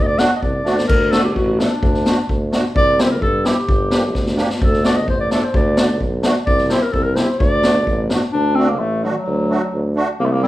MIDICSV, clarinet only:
0, 0, Header, 1, 2, 480
1, 0, Start_track
1, 0, Tempo, 465477
1, 919, Time_signature, 2, 2, 24, 8
1, 10804, End_track
2, 0, Start_track
2, 0, Title_t, "Clarinet"
2, 0, Program_c, 0, 71
2, 29, Note_on_c, 0, 75, 89
2, 71, Note_on_c, 0, 74, 107
2, 87, Note_off_c, 0, 75, 0
2, 193, Note_on_c, 0, 78, 112
2, 208, Note_off_c, 0, 74, 0
2, 364, Note_off_c, 0, 78, 0
2, 371, Note_on_c, 0, 75, 57
2, 436, Note_on_c, 0, 74, 86
2, 451, Note_off_c, 0, 75, 0
2, 898, Note_off_c, 0, 74, 0
2, 904, Note_on_c, 0, 70, 114
2, 1152, Note_on_c, 0, 69, 111
2, 1168, Note_off_c, 0, 70, 0
2, 1269, Note_off_c, 0, 69, 0
2, 1275, Note_on_c, 0, 67, 68
2, 1385, Note_off_c, 0, 67, 0
2, 1391, Note_on_c, 0, 66, 92
2, 1639, Note_on_c, 0, 62, 85
2, 1655, Note_off_c, 0, 66, 0
2, 2600, Note_off_c, 0, 62, 0
2, 2850, Note_on_c, 0, 74, 125
2, 3098, Note_on_c, 0, 72, 98
2, 3114, Note_off_c, 0, 74, 0
2, 3198, Note_off_c, 0, 72, 0
2, 3204, Note_on_c, 0, 70, 75
2, 3310, Note_off_c, 0, 70, 0
2, 3316, Note_on_c, 0, 69, 94
2, 3564, Note_on_c, 0, 67, 85
2, 3579, Note_off_c, 0, 69, 0
2, 4520, Note_off_c, 0, 67, 0
2, 4772, Note_on_c, 0, 69, 98
2, 4988, Note_off_c, 0, 69, 0
2, 5002, Note_on_c, 0, 74, 98
2, 5121, Note_on_c, 0, 75, 86
2, 5137, Note_off_c, 0, 74, 0
2, 5239, Note_off_c, 0, 75, 0
2, 5253, Note_on_c, 0, 72, 94
2, 5357, Note_off_c, 0, 72, 0
2, 5365, Note_on_c, 0, 74, 95
2, 5473, Note_off_c, 0, 74, 0
2, 5484, Note_on_c, 0, 74, 85
2, 5608, Note_on_c, 0, 72, 90
2, 5623, Note_off_c, 0, 74, 0
2, 5732, Note_on_c, 0, 74, 99
2, 5747, Note_off_c, 0, 72, 0
2, 6203, Note_off_c, 0, 74, 0
2, 6666, Note_on_c, 0, 74, 114
2, 6878, Note_off_c, 0, 74, 0
2, 6878, Note_on_c, 0, 74, 69
2, 6907, Note_on_c, 0, 72, 116
2, 6922, Note_off_c, 0, 74, 0
2, 7033, Note_on_c, 0, 70, 95
2, 7048, Note_off_c, 0, 72, 0
2, 7146, Note_on_c, 0, 69, 97
2, 7161, Note_off_c, 0, 70, 0
2, 7255, Note_on_c, 0, 70, 91
2, 7271, Note_off_c, 0, 69, 0
2, 7378, Note_on_c, 0, 72, 84
2, 7394, Note_off_c, 0, 70, 0
2, 7616, Note_off_c, 0, 72, 0
2, 7622, Note_on_c, 0, 74, 112
2, 8306, Note_off_c, 0, 74, 0
2, 8582, Note_on_c, 0, 62, 113
2, 8817, Note_on_c, 0, 60, 109
2, 8832, Note_off_c, 0, 62, 0
2, 8956, Note_on_c, 0, 58, 92
2, 8971, Note_off_c, 0, 60, 0
2, 9068, Note_on_c, 0, 57, 94
2, 9084, Note_off_c, 0, 58, 0
2, 9325, Note_on_c, 0, 54, 81
2, 9340, Note_off_c, 0, 57, 0
2, 9392, Note_on_c, 0, 51, 60
2, 9408, Note_off_c, 0, 54, 0
2, 9458, Note_on_c, 0, 54, 98
2, 9473, Note_off_c, 0, 51, 0
2, 10274, Note_off_c, 0, 54, 0
2, 10519, Note_on_c, 0, 58, 109
2, 10576, Note_on_c, 0, 57, 80
2, 10591, Note_off_c, 0, 58, 0
2, 10644, Note_on_c, 0, 58, 101
2, 10660, Note_off_c, 0, 57, 0
2, 10759, Note_on_c, 0, 60, 100
2, 10774, Note_off_c, 0, 58, 0
2, 10804, Note_off_c, 0, 60, 0
2, 10804, End_track
0, 0, End_of_file